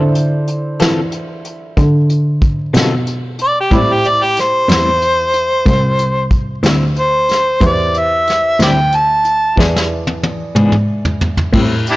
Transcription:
0.00 0.77 D3 medium
0.00 3.68 D4 medium
0.00 3.68 E4 medium
0.00 3.69 A4 soft
0.00 3.69 C5 medium
0.15 closed hi-hat medium
0.48 closed hi-hat medium
0.80 1.00 D3 medium
0.80 1.75 E3 medium
0.80 1.00 C4 medium
0.80 1.00 F4 medium
0.80 0.99 A4 medium
0.80 snare loud
0.80 closed hi-hat medium
1.12 closed hi-hat medium
1.45 closed hi-hat soft
1.77 2.72 D3 medium
1.77 kick medium
1.77 closed hi-hat medium
2.10 closed hi-hat medium
2.42 kick medium
2.42 closed hi-hat medium
2.73 3.69 B2 medium
2.73 2.94 D3 medium
2.73 2.94 C4 medium
2.73 2.94 F4 medium
2.73 2.93 A4 medium
2.73 snare loud
2.73 closed hi-hat medium
3.07 closed hi-hat medium
3.39 closed hi-hat medium
3.44 3.57 D5 medium
3.60 3.76 G4 medium
3.70 3.91 A2 medium
3.70 4.66 A2 medium
3.70 3.91 G3 medium
3.70 3.91 C4 medium
3.70 7.58 E4 medium
3.70 3.91 E4 medium
3.70 7.58 G4 soft
3.70 7.59 B5 soft
3.70 kick loud
3.70 closed hi-hat medium
3.74 7.59 C5 medium
3.74 3.95 D5 medium
3.93 4.10 G4 medium
4.05 4.26 D5 medium
4.05 closed hi-hat medium
4.24 4.38 G4 medium
4.37 6.30 C5 loud
4.37 snare soft
4.37 closed hi-hat medium
4.69 5.64 E2 medium
4.69 4.89 A2 medium
4.69 4.89 G3 medium
4.69 4.89 C4 medium
4.69 4.89 E4 medium
4.69 snare loud
4.69 closed hi-hat medium
5.02 closed hi-hat medium
5.34 closed hi-hat medium
5.66 6.61 C2 medium
5.66 kick medium
5.66 closed hi-hat medium
5.99 closed hi-hat medium
6.31 kick medium
6.31 closed hi-hat medium
6.63 7.59 D2 medium
6.63 6.84 A2 medium
6.63 6.84 G3 medium
6.63 6.84 C4 medium
6.63 6.83 E4 medium
6.63 snare loud
6.63 closed hi-hat medium
6.96 7.61 C5 medium
6.96 closed hi-hat soft
7.29 snare soft
7.29 closed hi-hat medium
7.60 8.56 E2 medium
7.60 9.53 E4 soft
7.60 9.53 G4 soft
7.60 9.54 B4 soft
7.60 9.54 C5 medium
7.60 kick loud
7.60 closed hi-hat medium
7.66 8.00 D5 medium
7.94 8.60 E5 medium
7.94 closed hi-hat soft
8.27 snare soft
8.27 closed hi-hat medium
8.59 9.55 D2 medium
8.59 8.80 A2 medium
8.59 8.80 G3 medium
8.59 8.79 C4 medium
8.59 8.79 E4 medium
8.59 8.70 D5 medium
8.59 8.72 E5 medium
8.59 8.97 G5 medium
8.59 snare loud
8.59 closed hi-hat medium
8.92 9.57 A5 medium
8.92 closed hi-hat medium
9.25 closed hi-hat medium
9.56 10.53 E2 medium
9.56 9.77 E3 medium
9.56 9.78 B3 medium
9.56 9.78 D4 medium
9.56 11.48 E4 soft
9.56 11.49 G#4 soft
9.56 9.78 G#4 medium
9.56 11.49 B4 soft
9.56 11.50 D5 medium
9.56 kick medium
9.60 snare medium
9.76 snare medium
10.07 high tom medium
10.23 high tom medium
10.55 11.50 G#2 medium
10.55 10.76 E3 medium
10.55 10.76 B3 medium
10.55 10.75 D4 medium
10.55 10.75 G#4 medium
10.55 mid tom medium
10.72 mid tom medium
11.05 floor tom medium
11.21 floor tom medium
11.37 floor tom medium
11.53 11.96 A2 medium
11.53 11.73 A2 medium
11.53 11.73 G3 medium
11.53 11.74 C4 medium
11.53 11.74 E4 medium
11.53 kick medium
11.53 crash medium
11.87 closed hi-hat medium
11.91 11.96 D4 medium
11.91 11.96 E4 medium
11.91 11.96 G4 medium

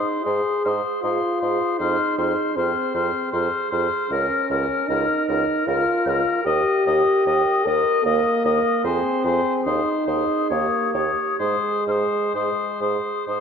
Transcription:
0.00 0.25 D#4 soft
0.00 0.23 G#4 soft
0.00 0.24 C5 soft
0.24 0.41 G#2 soft
0.24 0.63 G#4 soft
0.24 0.76 G#4 medium
0.24 0.64 C5 soft
0.24 0.64 D#6 soft
0.64 0.81 G#2 soft
0.64 1.02 G#4 soft
0.64 1.01 C5 soft
0.64 1.02 D#6 soft
0.64 0.69 F6 soft
1.02 1.20 G#2 soft
1.02 1.80 F4 medium
1.02 1.40 G#4 soft
1.02 1.40 C5 soft
1.02 1.41 D#6 soft
1.41 1.58 G#2 soft
1.41 1.79 G#4 soft
1.41 1.78 C5 soft
1.41 1.79 D#6 soft
1.79 1.96 F2 soft
1.79 2.57 D#4 soft
1.79 2.18 G#4 soft
1.79 2.17 C5 soft
1.79 2.18 F6 soft
2.18 2.34 F2 soft
2.18 2.56 G#4 soft
2.18 2.55 C5 soft
2.18 2.56 F6 soft
2.56 2.73 F2 soft
2.56 3.32 C4 medium
2.56 2.94 G#4 soft
2.56 2.94 C5 soft
2.56 2.94 F6 soft
2.94 3.10 F2 soft
2.94 3.32 G#4 soft
2.94 3.32 C5 soft
2.94 3.32 F6 soft
3.32 3.49 F2 soft
3.32 3.70 G#4 soft
3.32 3.70 C5 soft
3.32 3.71 F6 soft
3.71 3.88 F2 soft
3.71 4.10 G#4 soft
3.71 4.09 C5 soft
3.71 4.10 F6 soft
4.10 4.26 C#2 soft
4.10 4.89 C#4 medium
4.10 4.49 A#4 soft
4.10 4.50 A#4 soft
4.10 4.49 F6 soft
4.50 4.66 C#2 soft
4.50 4.88 A#4 soft
4.50 4.88 F6 soft
4.88 5.05 C#2 soft
4.88 5.68 D#4 medium
4.88 5.27 A#4 soft
4.88 5.26 F6 soft
5.28 5.44 C#2 soft
5.28 5.66 A#4 soft
5.28 5.66 F6 soft
5.66 5.83 C#2 soft
5.66 6.44 F4 medium
5.66 6.05 A#4 soft
5.66 6.06 A#4 soft
5.66 6.05 F6 soft
6.05 6.22 C#2 medium
6.05 6.45 A#4 soft
6.05 6.46 A#4 soft
6.05 6.45 F6 soft
6.05 6.10 G6 soft
6.45 6.61 D#2 soft
6.45 7.67 G4 medium
6.45 6.85 A#4 soft
6.45 6.85 D#5 medium
6.45 6.85 D#6 soft
6.86 7.02 D#2 medium
6.86 7.25 A#4 soft
6.86 7.26 D#5 soft
6.86 7.25 D#6 soft
7.26 7.42 D#2 medium
7.26 7.65 A#4 soft
7.26 7.65 D#5 soft
7.26 7.65 D#6 soft
7.65 7.82 D#2 soft
7.65 8.06 A#4 medium
7.65 8.04 A#4 soft
7.65 8.05 D#5 soft
7.65 8.04 D#6 soft
8.04 8.21 D#2 medium
8.04 8.87 A#3 medium
8.04 8.43 A#4 soft
8.04 8.44 D#5 soft
8.04 8.43 D#6 soft
8.44 8.61 D#2 medium
8.44 8.84 A#4 soft
8.44 8.84 D#5 soft
8.44 8.83 D#6 soft
8.84 9.00 F2 medium
8.84 9.69 C4 medium
8.84 9.25 G#4 soft
8.84 9.24 C5 medium
8.84 9.24 G#5 medium
9.24 9.40 F2 soft
9.24 9.66 G#4 soft
9.24 9.54 C5 soft
9.24 9.65 G#5 soft
9.65 9.82 D#2 soft
9.65 10.53 D#4 medium
9.65 9.96 G#4 soft
9.65 10.06 C5 soft
9.65 9.89 D#6 soft
10.06 10.23 D#2 soft
10.06 10.50 G#4 soft
10.06 10.49 C5 soft
10.06 10.50 D#6 soft
10.50 10.66 D#2 soft
10.50 11.09 A#3 medium
10.50 10.94 G4 soft
10.50 10.93 C#5 soft
10.50 10.94 D#6 soft
10.93 11.10 D#2 soft
10.93 11.40 G4 soft
10.93 11.39 C#5 soft
10.93 11.39 D#6 soft
11.39 11.56 G#2 soft
11.39 13.23 G#3 soft
11.39 11.87 G#4 soft
11.39 11.86 C5 soft
11.39 11.87 D#6 soft
11.86 12.03 G#2 soft
11.86 12.34 G#4 soft
11.86 12.33 C5 soft
11.86 11.92 F6 soft
11.91 12.34 D#6 soft
12.34 12.50 G#2 soft
12.34 12.80 G#4 soft
12.34 12.80 C5 soft
12.34 12.81 D#6 soft
12.81 12.97 G#2 soft
12.81 13.26 G#4 soft
12.81 13.26 C5 soft
12.81 13.26 D#6 soft
13.27 13.40 G#2 soft
13.27 13.40 G#4 soft
13.27 13.40 C5 soft
13.27 13.40 D#6 soft

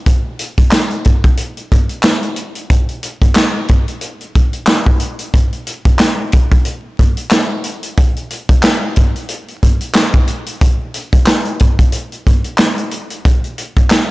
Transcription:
0.06 kick loud
0.06 closed hi-hat loud
0.39 closed hi-hat medium
0.58 kick medium
0.58 closed hi-hat medium
0.71 snare loud
0.71 clap medium
0.71 closed hi-hat loud
0.90 closed hi-hat soft
1.05 kick medium
1.05 closed hi-hat medium
1.24 kick medium
1.24 closed hi-hat soft
1.37 closed hi-hat medium
1.57 closed hi-hat soft
1.72 kick medium
1.72 closed hi-hat medium
1.89 closed hi-hat soft
2.03 snare loud
2.03 clap medium
2.03 closed hi-hat medium
2.23 closed hi-hat soft
2.36 closed hi-hat medium
2.55 closed hi-hat medium
2.70 kick loud
2.70 closed hi-hat loud
2.89 closed hi-hat soft
3.03 closed hi-hat medium
3.22 kick medium
3.22 closed hi-hat medium
3.35 snare loud
3.35 clap medium
3.35 closed hi-hat medium
3.68 kick medium
3.68 closed hi-hat medium
3.88 closed hi-hat soft
4.01 closed hi-hat medium
4.21 closed hi-hat soft
4.35 kick medium
4.35 closed hi-hat medium
4.53 closed hi-hat soft
4.67 snare loud
4.67 clap medium
4.67 closed hi-hat medium
4.86 kick loud
5.00 closed hi-hat medium
5.19 closed hi-hat medium
5.33 kick loud
5.33 closed hi-hat loud
5.53 closed hi-hat soft
5.67 closed hi-hat medium
5.85 kick loud
5.85 closed hi-hat medium
5.99 snare loud
5.99 clap medium
5.99 closed hi-hat loud
6.32 kick loud
6.32 closed hi-hat medium
6.52 kick medium
6.52 closed hi-hat soft
6.65 closed hi-hat medium
6.99 kick medium
6.99 closed hi-hat medium
7.17 closed hi-hat soft
7.31 snare loud
7.31 clap medium
7.31 closed hi-hat medium
7.64 closed hi-hat medium
7.83 closed hi-hat medium
7.98 kick loud
7.98 closed hi-hat loud
8.16 closed hi-hat soft
8.30 closed hi-hat medium
8.49 kick medium
8.49 closed hi-hat medium
8.63 snare loud
8.63 clap medium
8.63 closed hi-hat loud
8.96 kick medium
8.96 closed hi-hat medium
9.16 closed hi-hat soft
9.29 closed hi-hat medium
9.48 closed hi-hat soft
9.63 kick medium
9.63 closed hi-hat medium
9.81 closed hi-hat soft
9.94 snare loud
9.94 clap loud
9.94 closed hi-hat medium
10.14 kick loud
10.14 closed hi-hat soft
10.27 closed hi-hat medium
10.46 closed hi-hat medium
10.61 kick loud
10.61 closed hi-hat loud
10.94 closed hi-hat medium
11.13 kick medium
11.13 closed hi-hat medium
11.26 snare loud
11.26 clap medium
11.26 closed hi-hat loud
11.45 closed hi-hat soft
11.59 kick loud
11.59 closed hi-hat medium
11.79 kick medium
11.79 closed hi-hat soft
11.92 closed hi-hat medium
12.12 closed hi-hat soft
12.27 kick medium
12.27 closed hi-hat medium
12.44 closed hi-hat soft
12.58 snare loud
12.58 clap medium
12.58 closed hi-hat medium
12.78 closed hi-hat soft
12.91 closed hi-hat medium
13.10 closed hi-hat medium
13.25 kick loud
13.25 closed hi-hat loud
13.44 closed hi-hat soft
13.58 closed hi-hat medium
13.77 kick loud
13.77 closed hi-hat medium
13.90 snare loud
13.90 clap medium
13.90 closed hi-hat loud

